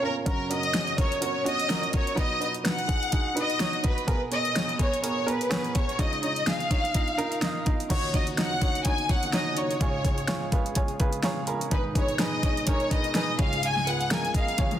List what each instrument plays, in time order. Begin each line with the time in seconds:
Already playing: grand piano C#3 G#3 C#4 F4 A#4 C#5
0.02 grand piano C#4 F4 A#4, violin section A#4
0.26 grand piano F#2 C#3 C#4 F#4 A#4, violin section A#4, kick, closed hi-hat
0.50 grand piano C#4 F#4 A#4, violin section D#5, closed hi-hat
0.63 closed hi-hat
0.73 grand piano C#4 F#4 G#4, snare, closed hi-hat
0.87 closed hi-hat
0.97 grand piano C#4 F#4 A#4, violin section C#5, kick, closed hi-hat
1.12 closed hi-hat
1.21 grand piano C#4 F#4 A#4, violin section C#5, closed hi-hat
1.44 grand piano C#4 F#4 C#5, violin section D#5, closed hi-hat
1.60 closed hi-hat
1.68 grand piano C#4 F#4 A#4, snare, closed hi-hat
1.83 closed hi-hat
1.93 grand piano C#4 F#4 A#4, violin section C#5, kick, closed hi-hat
2.07 closed hi-hat
2.15 grand piano B2 F#3 D#4 F#4 B4, kick, closed hi-hat
2.20 violin section D#5
2.40 grand piano D#4 F#4 B4, violin section D#5, closed hi-hat
2.54 closed hi-hat
2.63 grand piano D#4 F#4 B4, snare, closed hi-hat
2.68 violin section F#5
2.79 closed hi-hat
2.87 grand piano D#4 F#4 G#4, kick, closed hi-hat
3.03 closed hi-hat
3.11 grand piano D#4 F#4 G#4, kick, closed hi-hat
3.35 grand piano D#4 F#4 B4, closed hi-hat
3.40 violin section D#5
3.50 closed hi-hat
3.60 grand piano D#4 F#4 C#5, snare, closed hi-hat
3.73 closed hi-hat
3.83 grand piano D#4 F#4 B4, kick, closed hi-hat
3.87 violin section B4
3.98 closed hi-hat
4.06 grand piano B2 B3 G#4 A#4, violin section B4, kick, closed hi-hat
4.31 grand piano B3 G#4 C#5, violin section D#5, closed hi-hat
4.45 closed hi-hat
4.55 grand piano B3 G#4 C#5, snare, closed hi-hat
4.69 closed hi-hat
4.79 grand piano B3 G#4 B4, violin section C#5, kick, closed hi-hat
4.94 closed hi-hat
5.02 grand piano B3 G#4 A#4, violin section C#5, closed hi-hat
5.26 grand piano B3 G#4 A#4, violin section B4, closed hi-hat
5.41 closed hi-hat
5.49 grand piano B3 G#4 C#5, snare, closed hi-hat
5.64 closed hi-hat
5.74 grand piano B3 G#4 C#5, violin section C#5, kick, closed hi-hat
5.89 closed hi-hat
5.99 grand piano C#3 G#3 D#4 F4 C#5, violin section D#5, kick, closed hi-hat
6.13 closed hi-hat
6.22 grand piano D#4 F4 C#5, violin section D#5, closed hi-hat
6.36 closed hi-hat
6.46 grand piano D#4 F4 G#4, violin section F5, snare, closed hi-hat
6.60 closed hi-hat
6.70 grand piano D#4 F4 C#5, kick, closed hi-hat
6.85 closed hi-hat
6.94 grand piano D#4 F4 D#5, kick, closed hi-hat
7.08 closed hi-hat
7.18 grand piano D#4 F4 A#4, closed hi-hat
7.32 closed hi-hat
7.41 grand piano D#4 F4 D#5, snare, closed hi-hat
7.65 grand piano D#4 F4 D#5, kick, closed hi-hat
7.80 closed hi-hat
7.89 grand piano D#2 A#2 D#4 F#4 C#5, tonewheel organ C#3 A#3 D#4 F#4, violin section C#5, kick, closed hi-hat, crash
8.13 grand piano D#4 F#4 C#5, violin section D#5, kick, closed hi-hat
8.27 closed hi-hat
8.37 grand piano D#4 F#4 D#5, violin section F#5, snare, closed hi-hat
8.62 grand piano D#4 F#4 C#5, kick, closed hi-hat
8.75 closed hi-hat
8.85 grand piano D#4 F#4 C#5, violin section G#5, kick, closed hi-hat
8.98 closed hi-hat
9.09 grand piano D#4 F#4 C#5, violin section F#5, kick, closed hi-hat
9.23 closed hi-hat
9.33 grand piano D#4 F#4 C#5, violin section D#5, snare, closed hi-hat
9.57 grand piano D#4 F#4 C#5, violin section C#5, closed hi-hat
9.71 closed hi-hat
9.81 grand piano C#2 G#2 F4 G#4 C#5, tonewheel organ G#3 F4 G#4, kick, closed hi-hat
10.05 grand piano F4 G#4 C#5, kick, closed hi-hat
10.18 closed hi-hat
10.28 grand piano F4 G#4 C#5, snare, closed hi-hat
10.52 grand piano F4 G#4 B4 F5, kick, closed hi-hat
10.66 closed hi-hat
10.75 grand piano F4 G#4 C#5 G#5, kick, closed hi-hat
10.88 closed hi-hat
10.99 grand piano F4 G#4 B4 G#5, kick, closed hi-hat
11.13 closed hi-hat
11.23 grand piano F4 G#4 C#5 A#5, snare, closed hi-hat
11.47 grand piano F4 G#4 A#4 B5, closed hi-hat
11.61 closed hi-hat
11.71 grand piano G#2 D#3 D#4 G#4 B4, tonewheel organ B2 D#4, violin section B4, kick, closed hi-hat
11.95 grand piano D#4 G#4 B4, violin section C#5, kick, closed hi-hat
12.08 closed hi-hat
12.19 grand piano D#4 G#4 B4, violin section D#5, snare, closed hi-hat
12.43 grand piano D#4 G#4 C#5, kick, closed hi-hat
12.57 closed hi-hat
12.67 grand piano D#4 G#4 A#4, violin section C#5, kick, closed hi-hat
12.80 closed hi-hat
12.90 grand piano D#4 G#4 B4, violin section D#5, kick, closed hi-hat
13.04 closed hi-hat
13.15 grand piano D#4 G#4 B4, violin section D#5, snare, closed hi-hat
13.38 grand piano C#2 G#2 F4 G#4 C#5, tonewheel organ C#3 G#3 F4, violin section F5, kick, closed hi-hat
13.53 closed hi-hat
13.63 violin section G#5, closed hi-hat
13.76 snare
13.86 grand piano F4 G#4 B4, violin section F#5, closed hi-hat
14.01 closed hi-hat
14.11 grand piano F4 G#4 A#4, violin section G#5, snare, closed hi-hat
14.25 closed hi-hat
14.35 grand piano F4 G#4 D#5, violin section F5, kick, closed hi-hat
14.48 closed hi-hat
14.58 grand piano F4 G#4 C#5, kick, closed hi-hat, high tom
14.71 closed hi-hat, high tom